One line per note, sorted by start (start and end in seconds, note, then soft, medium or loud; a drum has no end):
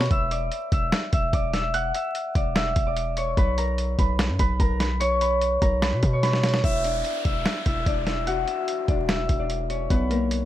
0.00 1.76 B4 medium
0.00 0.37 C#5 medium
0.00 1.05 B5 medium
0.00 0.37 C#6 medium
0.00 snare loud
0.00 closed hi-hat medium
0.06 closed hi-hat soft
0.11 0.50 E1 loud
0.11 0.73 E5 medium
0.11 0.72 E6 loud
0.11 kick loud
0.11 closed hi-hat medium
0.31 1.34 D5 medium
0.31 1.33 D6 medium
0.31 closed hi-hat medium
0.52 closed hi-hat medium
0.72 0.92 E1 loud
0.72 1.13 E5 medium
0.72 1.13 E6 medium
0.72 kick medium
0.72 closed hi-hat medium
0.92 finger snap medium
0.92 snare loud
0.92 closed hi-hat medium
1.13 1.32 E1 loud
1.13 1.53 E5 medium
1.13 1.53 E6 medium
1.13 kick medium
1.13 closed hi-hat medium
1.33 1.92 E1 loud
1.33 2.36 D5 medium
1.33 2.35 D6 medium
1.33 kick medium
1.33 closed hi-hat medium
1.53 1.95 E5 medium
1.53 1.94 E6 medium
1.53 snare medium
1.53 closed hi-hat medium
1.74 3.35 F#5 medium
1.74 2.80 F#6 loud
1.74 closed hi-hat medium
1.94 2.56 E5 medium
1.94 2.55 E6 medium
1.94 closed hi-hat medium
2.15 closed hi-hat medium
2.35 2.75 E1 loud
2.35 2.87 D5 medium
2.35 2.86 D6 medium
2.35 kick medium
2.35 closed hi-hat medium
2.55 4.28 E5 medium
2.55 3.69 E6 medium
2.55 finger snap medium
2.55 snare loud
2.55 closed hi-hat medium
2.76 3.35 E1 loud
2.76 kick medium
2.76 closed hi-hat medium
2.87 3.23 D5 medium
2.87 3.23 D6 medium
2.97 closed hi-hat medium
3.17 5.01 C#5 medium
3.17 4.43 C#6 medium
3.17 closed hi-hat medium
3.37 3.96 B1 loud
3.37 3.64 B4 medium
3.37 3.64 B5 loud
3.37 kick loud
3.37 closed hi-hat medium
3.58 4.05 A#4 medium
3.58 4.05 A#5 medium
3.58 closed hi-hat medium
3.78 closed hi-hat medium
3.99 4.31 B1 loud
3.99 4.40 B4 medium
3.99 4.39 B5 medium
3.99 kick medium
3.99 closed hi-hat medium
4.19 finger snap medium
4.19 snare loud
4.19 closed hi-hat medium
4.29 4.39 F#2 loud
4.39 4.59 B1 loud
4.39 4.66 B4 medium
4.39 4.66 B5 medium
4.39 kick medium
4.39 closed hi-hat medium
4.60 5.58 B1 loud
4.60 4.86 A#4 medium
4.60 4.86 A#5 medium
4.60 kick loud
4.60 closed hi-hat medium
4.80 5.22 B4 medium
4.80 5.21 B5 medium
4.80 snare medium
4.80 closed hi-hat medium
5.00 6.13 C#5 loud
5.00 6.13 C#6 loud
5.00 closed hi-hat medium
5.21 5.68 B4 medium
5.21 5.68 B5 medium
5.21 closed hi-hat medium
5.41 closed hi-hat medium
5.62 5.94 B1 loud
5.62 5.88 A#4 medium
5.62 5.88 A#5 medium
5.62 kick medium
5.62 closed hi-hat medium
5.82 6.23 B4 medium
5.82 6.23 B5 medium
5.82 finger snap medium
5.82 snare loud
5.82 closed hi-hat medium
5.93 6.02 B2 loud
6.03 6.62 B2 loud
6.03 kick medium
6.03 closed hi-hat medium
6.13 6.90 C#5 medium
6.13 6.90 C#6 medium
6.23 8.29 B4 medium
6.23 7.58 B5 medium
6.23 snare medium
6.23 closed hi-hat medium
6.33 snare medium
6.43 snare medium
6.43 closed hi-hat medium
6.43 open hi-hat medium
6.49 closed hi-hat medium
6.54 snare loud
6.54 closed hi-hat medium
6.59 closed hi-hat soft
6.64 7.03 E1 loud
6.64 7.26 E4 medium
6.64 7.25 E5 loud
6.64 kick loud
6.64 closed hi-hat medium
6.64 downlifter medium
6.84 7.87 D4 medium
6.84 7.87 D5 medium
6.84 closed hi-hat medium
7.05 closed hi-hat medium
7.25 7.45 E1 loud
7.25 7.67 E4 medium
7.25 7.66 E5 medium
7.25 kick medium
7.25 closed hi-hat medium
7.46 finger snap medium
7.46 snare loud
7.46 closed hi-hat medium
7.66 7.86 E1 loud
7.66 8.07 E4 medium
7.66 8.06 E5 medium
7.66 kick medium
7.66 closed hi-hat medium
7.86 8.45 E1 loud
7.86 8.89 D4 medium
7.86 8.88 D5 medium
7.86 kick medium
7.86 closed hi-hat medium
8.06 8.48 E4 medium
8.06 8.47 E5 medium
8.06 snare medium
8.06 closed hi-hat medium
8.27 10.45 F#4 medium
8.27 9.88 F#5 loud
8.27 closed hi-hat medium
8.48 9.08 E4 medium
8.48 9.08 E5 medium
8.48 closed hi-hat medium
8.68 closed hi-hat medium
8.88 9.28 E1 loud
8.88 9.40 D4 medium
8.88 9.39 D5 medium
8.88 kick medium
8.88 closed hi-hat medium
9.08 10.45 E4 medium
9.08 10.45 E5 medium
9.08 finger snap medium
9.08 snare loud
9.08 closed hi-hat medium
9.29 9.88 E1 loud
9.29 kick medium
9.29 closed hi-hat medium
9.39 9.76 D4 medium
9.39 9.76 D5 medium
9.50 closed hi-hat medium
9.70 10.45 C#4 medium
9.70 10.45 C#5 medium
9.70 closed hi-hat medium
9.90 10.45 B1 loud
9.90 10.16 B3 medium
9.90 10.16 B4 loud
9.90 kick loud
9.90 closed hi-hat medium
10.10 10.45 A#3 medium
10.10 10.45 A#4 medium
10.10 closed hi-hat medium
10.31 closed hi-hat medium